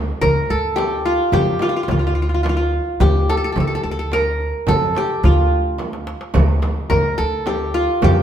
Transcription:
0.00 0.11 D2 medium
0.21 0.44 D2 medium
0.21 0.56 A#4 medium
0.21 frame drum medium
0.21 darbuka dum medium
0.36 darbuka ka soft
0.50 1.16 D2 medium
0.50 1.67 A4 medium
0.76 1.33 G4 medium
0.76 darbuka tek medium
0.76 frame drum medium
1.06 1.62 F4 medium
1.06 darbuka ka soft
1.32 1.55 F2 medium
1.32 2.59 G4 medium
1.32 frame drum medium
1.32 darbuka dum medium
1.59 1.69 F4 medium
1.59 darbuka tek medium
1.59 frame drum medium
1.69 1.76 F4 soft
1.76 1.83 F4 soft
1.83 1.91 F4 soft
1.88 2.77 D2 medium
1.88 1.99 F4 soft
1.88 frame drum medium
1.88 darbuka dum medium
1.99 2.06 F4 soft
2.04 2.15 F4 soft
2.04 darbuka ka soft
2.15 2.22 F4 soft
2.22 2.29 F4 soft
2.29 2.34 F4 soft
2.34 2.43 F4 soft
2.43 2.49 F4 soft
2.43 darbuka tek medium
2.43 frame drum medium
2.49 2.56 F4 soft
2.57 3.91 F4 soft
2.74 darbuka ka soft
3.00 3.45 D2 loud
3.00 4.26 G4 medium
3.00 frame drum medium
3.00 darbuka dum medium
3.29 3.37 A4 medium
3.29 darbuka tek medium
3.37 3.44 A4 medium
3.44 3.52 A4 medium
3.52 3.78 D2 medium
3.52 3.60 A4 soft
3.52 frame drum medium
3.58 3.67 A4 medium
3.58 darbuka dum medium
3.67 3.75 A4 soft
3.71 3.83 A4 medium
3.71 darbuka ka soft
3.83 4.51 D2 medium
3.83 3.91 A4 medium
3.91 3.99 A4 medium
3.99 4.19 A4 medium
4.12 4.74 A#4 medium
4.12 darbuka tek medium
4.12 frame drum medium
4.42 darbuka ka soft
4.67 4.91 F2 medium
4.67 5.86 A4 medium
4.67 frame drum medium
4.67 darbuka dum medium
4.95 6.23 G4 medium
4.95 darbuka tek medium
4.95 frame drum medium
5.23 6.12 D2 medium
5.23 6.60 F4 medium
5.23 frame drum medium
5.23 darbuka dum medium
5.38 darbuka ka soft
5.79 darbuka tek soft
5.79 frame drum medium
5.93 darbuka ka medium
6.07 darbuka tek medium
6.21 darbuka ka medium
6.34 6.80 D2 medium
6.34 frame drum loud
6.34 darbuka dum medium
6.62 darbuka tek medium
6.62 frame drum medium
6.90 7.13 D2 medium
6.90 7.24 A#4 medium
6.90 frame drum medium
6.90 darbuka dum medium
7.18 7.85 D2 medium
7.18 8.23 A4 medium
7.46 8.04 G4 medium
7.46 darbuka tek medium
7.46 frame drum medium
7.74 8.23 F4 medium
8.02 8.23 F2 medium
8.02 8.23 G4 medium
8.02 darbuka dum medium
8.02 frame drum loud

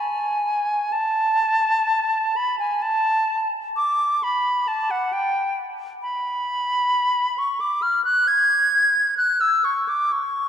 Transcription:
0.00 0.94 G#5 medium
0.92 2.38 A5 medium
2.36 2.59 B5 medium
2.59 2.84 G#5 medium
2.82 3.50 A5 medium
3.76 4.25 D6 medium
4.23 4.69 B5 medium
4.68 4.92 A5 medium
4.91 5.14 F#5 medium
5.13 5.58 G5 medium
6.02 7.40 B5 medium
7.38 7.62 C#6 medium
7.61 7.84 D6 medium
7.82 8.04 F6 medium
8.05 8.29 F#6 medium
8.28 9.17 G#6 medium
9.17 9.42 F#6 medium
9.41 9.66 E6 medium
9.64 9.90 C#6 medium
9.89 10.14 D6 medium
10.12 10.49 C#6 medium

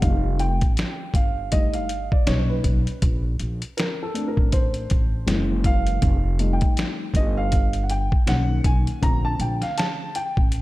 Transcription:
0.01 0.57 F1 loud
0.01 0.54 G3 medium
0.01 0.54 A3 soft
0.01 0.54 D#4 medium
0.01 0.41 F5 medium
0.01 kick loud
0.01 closed hi-hat medium
0.39 1.17 G5 medium
0.39 closed hi-hat medium
0.61 0.76 A1 medium
0.61 kick medium
0.61 closed hi-hat medium
0.77 snare loud
0.77 closed hi-hat medium
1.14 2.07 G1 medium
1.14 1.54 F5 medium
1.14 kick medium
1.14 closed hi-hat medium
1.51 1.86 G3 medium
1.51 1.86 A3 soft
1.51 1.86 D#4 medium
1.51 1.75 D#5 medium
1.51 kick medium
1.51 closed hi-hat medium
1.74 2.13 F5 medium
1.74 closed hi-hat medium
1.89 closed hi-hat medium
2.12 2.28 D5 medium
2.12 kick loud
2.26 2.61 B1 medium
2.26 2.79 A#2 medium
2.26 2.79 C#4 medium
2.26 2.79 D#4 medium
2.26 2.38 C#5 medium
2.26 snare loud
2.26 closed hi-hat medium
2.40 2.48 C#5 medium
2.49 3.20 B4 medium
2.64 2.84 B1 medium
2.64 kick medium
2.64 closed hi-hat medium
2.87 closed hi-hat medium
3.02 3.36 A#1 loud
3.02 kick loud
3.02 closed hi-hat medium
3.40 3.59 A#1 medium
3.40 closed hi-hat medium
3.62 closed hi-hat medium
3.77 4.01 A#4 medium
3.77 snare loud
3.77 closed hi-hat medium
4.03 4.28 A4 medium
4.14 5.23 A3 soft
4.14 5.23 C4 soft
4.14 5.24 D4 medium
4.14 closed hi-hat medium
4.28 4.53 A#4 medium
4.37 4.86 A1 medium
4.37 kick medium
4.52 5.69 C5 medium
4.52 kick medium
4.52 closed hi-hat medium
4.74 closed hi-hat medium
4.90 5.25 A1 medium
4.90 kick medium
4.90 closed hi-hat medium
5.26 5.98 F#1 loud
5.26 5.99 E3 medium
5.26 5.98 G#3 medium
5.26 5.98 A#3 soft
5.26 snare loud
5.26 closed hi-hat loud
5.64 6.55 F5 loud
5.64 kick medium
5.64 closed hi-hat medium
5.87 closed hi-hat medium
6.02 6.57 F1 loud
6.02 kick loud
6.02 closed hi-hat medium
6.39 7.48 G3 soft
6.39 7.48 A3 soft
6.39 7.48 D#4 medium
6.39 closed hi-hat medium
6.53 6.88 G5 medium
6.61 6.76 A1 medium
6.61 kick medium
6.61 closed hi-hat medium
6.77 snare loud
6.77 closed hi-hat medium
7.14 8.07 G1 loud
7.14 7.38 D#5 medium
7.14 kick medium
7.14 closed hi-hat medium
7.38 7.81 F5 medium
7.52 kick medium
7.52 closed hi-hat medium
7.73 closed hi-hat medium
7.83 7.90 F#5 medium
7.90 8.29 G5 medium
7.90 closed hi-hat medium
8.12 kick loud
8.26 8.61 B1 loud
8.26 8.98 D#3 medium
8.26 8.98 A#3 soft
8.26 8.99 C#4 medium
8.26 8.67 F#5 loud
8.26 snare loud
8.26 closed hi-hat loud
8.64 8.84 B1 loud
8.64 9.04 G#5 medium
8.64 kick loud
8.64 closed hi-hat medium
8.87 closed hi-hat medium
9.01 9.36 A#1 loud
9.01 10.10 D3 medium
9.01 10.11 A3 soft
9.01 10.11 C4 medium
9.01 9.25 A#5 loud
9.01 kick loud
9.01 closed hi-hat medium
9.25 9.41 A5 loud
9.40 9.59 A#1 medium
9.40 9.63 G5 medium
9.40 closed hi-hat medium
9.62 9.78 F5 medium
9.62 snare soft
9.62 closed hi-hat medium
9.78 10.16 A5 loud
9.78 snare loud
9.78 closed hi-hat medium
10.15 10.62 G5 loud
10.15 closed hi-hat medium
10.37 10.62 A1 medium
10.37 kick medium
10.52 closed hi-hat medium

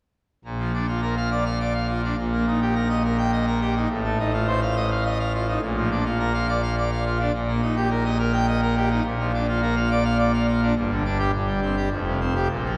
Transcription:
0.45 2.14 A#1 medium
0.45 2.14 A#2 medium
0.59 0.72 F3 medium
0.74 0.86 D4 medium
0.88 1.01 F4 medium
1.02 1.15 A#4 medium
1.17 1.29 F5 medium
1.31 1.44 D5 medium
1.46 1.58 F5 medium
1.60 1.73 D5 medium
1.74 1.87 F5 medium
1.89 2.02 F4 medium
2.04 2.16 D4 medium
2.18 3.87 A#1 medium
2.18 3.87 A#2 medium
2.32 2.45 A#3 soft
2.47 2.60 D#4 medium
2.62 2.74 G4 medium
2.75 2.88 A#4 medium
2.90 3.02 D#5 medium
3.04 3.17 A#4 medium
3.18 3.31 G5 medium
3.32 3.45 D#5 medium
3.46 3.60 A#4 medium
3.61 3.74 G4 medium
3.76 3.88 D#4 medium
3.90 5.58 A1 medium
3.90 5.58 A2 medium
4.04 4.17 A3 soft
4.19 4.32 D#4 medium
4.33 4.46 F4 medium
4.48 4.60 C5 medium
4.62 4.75 F5 medium
4.76 4.89 D#5 medium
4.91 5.04 F5 medium
5.05 5.18 D#5 medium
5.20 5.32 F5 medium
5.34 5.47 F4 medium
5.48 5.60 D#4 medium
5.62 7.30 A#1 medium
5.62 7.30 A#2 medium
5.77 5.89 F3 medium
5.91 6.04 D4 medium
6.06 6.18 F4 medium
6.19 6.32 A#4 medium
6.34 6.47 F5 loud
6.48 6.61 D5 medium
6.63 6.75 F5 medium
6.77 6.90 D5 medium
6.92 7.04 F5 medium
7.06 7.18 F4 medium
7.20 7.32 D4 medium
7.33 9.01 A#1 medium
7.33 9.01 A#2 medium
7.48 7.61 A#3 medium
7.62 7.75 D#4 medium
7.76 7.89 G4 medium
7.91 8.03 A#4 medium
8.05 8.17 D#5 medium
8.19 8.32 A#4 medium
8.33 8.46 G5 medium
8.48 8.60 D#5 medium
8.62 8.75 A#4 medium
8.77 8.89 G4 medium
8.91 9.03 D#4 medium
9.05 10.72 A#1 medium
9.05 10.72 A#2 medium
9.19 9.32 F3 medium
9.34 9.46 D4 medium
9.48 9.61 F4 medium
9.62 9.75 A#4 medium
9.76 9.89 F5 medium
9.91 10.03 D5 medium
10.05 10.17 F5 medium
10.19 10.32 D5 medium
10.34 10.46 F5 medium
10.48 10.60 F4 medium
10.62 10.74 D4 medium
10.76 11.31 G1 medium
10.76 11.31 G2 medium
10.90 11.03 D3 medium
11.05 11.18 D4 medium
11.19 11.31 G4 medium
11.33 11.89 G1 medium
11.33 11.89 G2 medium
11.47 11.60 G3 medium
11.62 11.75 C4 medium
11.77 11.89 G4 medium
11.90 12.48 F1 medium
11.90 12.48 F2 medium
12.06 12.19 C3 medium
12.21 12.34 C4 medium
12.35 12.48 G4 medium
12.50 12.77 A#1 medium
12.50 12.77 A#2 medium
12.65 12.77 F3 soft

